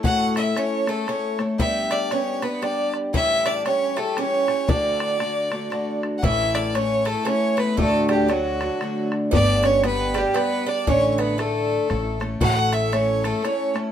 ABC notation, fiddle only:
X:1
M:3/4
L:1/16
Q:"Swing" 1/4=116
K:Amix
V:1 name="Fiddle"
f2 e2 c2 A2 c2 z2 | e2 d2 c2 B2 d2 z2 | e2 d2 c2 A2 c4 | d8- d2 z3/2 f/2 |
e2 d2 c2 A2 c2 B2 | A2 G2 F6 z2 | d2 c2 B2 G2 B2 d2 | c3/2 c/2 B2 A6 z2 |
f2 e2 c2 A2 c2 z2 |]